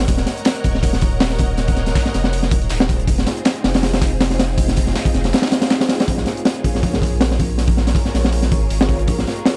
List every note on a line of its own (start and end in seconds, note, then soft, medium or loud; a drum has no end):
0.08 0.25 D#1 loud
0.08 1.18 A#4 loud
0.08 1.18 C#5 medium
0.08 1.18 D#5 medium
0.08 1.18 F#5 loud
0.08 kick loud
0.08 closed hi-hat medium
0.08 open hi-hat medium
0.17 snare medium
0.17 closed hi-hat soft
0.26 snare medium
0.26 closed hi-hat medium
0.26 open hi-hat medium
0.37 closed hi-hat soft
0.45 snare loud
0.45 closed hi-hat medium
0.45 open hi-hat loud
0.55 closed hi-hat soft
0.64 1.94 D#1 loud
0.64 kick medium
0.64 closed hi-hat medium
0.64 open hi-hat medium
0.75 snare soft
0.83 kick loud
0.83 closed hi-hat loud
0.83 open hi-hat medium
0.93 snare soft
1.01 kick loud
1.01 closed hi-hat medium
1.01 open hi-hat medium
1.20 snare loud
1.20 closed hi-hat medium
1.20 open hi-hat medium
1.30 snare medium
1.30 closed hi-hat soft
1.39 kick loud
1.39 closed hi-hat medium
1.39 open hi-hat medium
1.57 snare soft
1.57 closed hi-hat medium
1.57 open hi-hat medium
1.68 kick medium
1.68 open hi-hat medium
1.77 snare soft
1.77 closed hi-hat medium
1.86 snare soft
1.86 open hi-hat medium
1.95 kick medium
1.95 snare loud
1.95 closed hi-hat medium
1.95 open hi-hat medium
2.06 snare soft
2.06 closed hi-hat soft
2.14 2.53 F1 loud
2.14 snare soft
2.14 closed hi-hat medium
2.14 open hi-hat medium
2.24 snare medium
2.33 closed hi-hat medium
2.33 open hi-hat medium
2.43 snare soft
2.51 2.69 D#1 medium
2.51 kick loud
2.51 closed hi-hat medium
2.51 open hi-hat medium
2.62 closed hi-hat soft
2.69 3.07 D#1 medium
2.69 snare loud
2.69 closed hi-hat medium
2.69 open hi-hat medium
2.80 snare loud
2.89 kick medium
2.89 closed hi-hat medium
2.89 open hi-hat medium
3.00 closed hi-hat soft
3.07 3.25 F1 loud
3.07 4.18 C4 loud
3.07 4.18 D#4 medium
3.07 4.18 F4 medium
3.07 4.18 G#4 loud
3.07 kick loud
3.07 closed hi-hat medium
3.07 open hi-hat medium
3.18 snare medium
3.18 closed hi-hat soft
3.27 snare soft
3.27 closed hi-hat medium
3.27 open hi-hat medium
3.37 closed hi-hat soft
3.45 snare loud
3.45 closed hi-hat medium
3.45 open hi-hat medium
3.56 closed hi-hat soft
3.64 4.94 F1 loud
3.64 snare medium
3.64 closed hi-hat medium
3.64 open hi-hat medium
3.74 snare loud
3.74 closed hi-hat soft
3.74 open hi-hat medium
3.83 snare loud
3.83 closed hi-hat medium
3.83 open hi-hat medium
3.93 snare loud
3.93 open hi-hat medium
4.02 kick medium
4.02 snare loud
4.02 closed hi-hat medium
4.02 open hi-hat medium
4.21 snare loud
4.21 closed hi-hat medium
4.21 open hi-hat loud
4.30 snare medium
4.30 closed hi-hat soft
4.39 snare medium
4.39 closed hi-hat medium
4.39 open hi-hat medium
4.58 5.50 C4 loud
4.58 5.50 D#4 medium
4.58 5.50 F4 medium
4.58 5.50 G#4 loud
4.58 kick loud
4.58 closed hi-hat medium
4.58 open hi-hat medium
4.68 snare medium
4.76 kick loud
4.76 closed hi-hat medium
4.76 open hi-hat medium
4.87 snare soft
4.96 snare loud
4.96 snare soft
4.96 closed hi-hat medium
4.96 open hi-hat medium
5.05 kick loud
5.05 closed hi-hat soft
5.05 open hi-hat medium
5.14 5.33 F1 loud
5.14 snare soft
5.14 closed hi-hat medium
5.24 snare soft
5.24 open hi-hat medium
5.33 snare medium
5.33 snare loud
5.33 closed hi-hat medium
5.33 open hi-hat medium
5.38 snare loud
5.38 closed hi-hat medium
5.42 snare loud
5.42 snare medium
5.42 closed hi-hat medium
5.42 open hi-hat medium
5.47 snare loud
5.47 closed hi-hat medium
5.52 snare loud
5.52 closed hi-hat medium
5.52 open hi-hat medium
5.62 snare loud
5.62 closed hi-hat soft
5.62 open hi-hat medium
5.70 snare loud
5.70 closed hi-hat medium
5.70 open hi-hat medium
5.81 snare loud
5.81 open hi-hat medium
5.89 snare loud
5.89 closed hi-hat medium
5.89 open hi-hat medium
6.00 snare loud
6.00 open hi-hat medium
6.07 6.25 A#1 loud
6.07 7.18 F4 loud
6.07 7.18 G#4 loud
6.07 7.18 A#4 medium
6.07 7.18 C#5 loud
6.07 kick loud
6.07 open hi-hat medium
6.18 snare soft
6.26 snare soft
6.26 open hi-hat medium
6.37 closed hi-hat soft
6.45 snare loud
6.45 open hi-hat medium
6.55 closed hi-hat soft
6.64 7.94 A#1 loud
6.64 kick loud
6.64 open hi-hat medium
6.75 snare soft
6.83 kick loud
6.83 open hi-hat medium
6.94 snare medium
7.02 kick loud
7.02 open hi-hat medium
7.21 snare loud
7.21 open hi-hat medium
7.31 snare medium
7.40 kick medium
7.40 open hi-hat medium
7.58 8.50 F4 loud
7.58 8.50 G#4 medium
7.58 8.49 A#4 loud
7.58 8.49 C#5 loud
7.58 snare soft
7.58 open hi-hat medium
7.68 kick loud
7.68 open hi-hat medium
7.77 snare soft
7.87 snare soft
7.87 open hi-hat medium
7.95 kick loud
7.95 open hi-hat medium
8.05 snare soft
8.14 8.53 A#1 loud
8.14 snare soft
8.14 open hi-hat medium
8.25 snare medium
8.32 open hi-hat medium
8.42 snare soft
8.51 8.69 G#1 medium
8.51 kick loud
8.51 open hi-hat medium
8.70 9.07 G#1 medium
8.70 open hi-hat medium
8.81 snare loud
8.89 kick loud
8.89 open hi-hat medium
8.99 closed hi-hat soft
9.08 9.25 A#1 loud
9.08 9.57 F4 loud
9.08 9.57 G#4 loud
9.08 9.57 A#4 medium
9.08 9.57 C#5 loud
9.08 kick loud
9.08 open hi-hat medium
9.19 snare soft
9.27 snare soft
9.27 open hi-hat medium
9.36 closed hi-hat soft
9.46 snare loud
9.46 open hi-hat medium